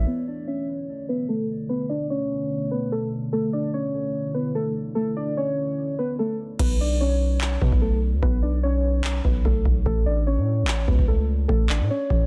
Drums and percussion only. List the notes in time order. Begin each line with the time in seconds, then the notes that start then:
6.59 kick, crash
7.41 clap
7.61 kick
7.72 kick
8.23 kick
9.04 clap
9.25 kick
9.45 kick
9.65 kick
9.86 kick
10.68 clap
10.88 kick
10.99 kick
11.49 kick
11.70 clap
12.10 kick